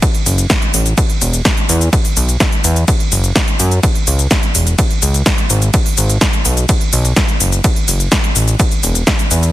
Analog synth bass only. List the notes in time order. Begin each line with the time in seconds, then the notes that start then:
0.26 F#1
0.74 A1
1.21 E1
1.69 E2
2.17 B1
2.64 E2
3.12 F#1
3.59 F#2
4.07 C#2
4.55 E1
5.02 C#2
5.50 G#1
5.98 G#1
6.45 B1
6.93 B1
7.41 F#1
7.88 F#1
8.36 A1
8.83 E1
9.31 E2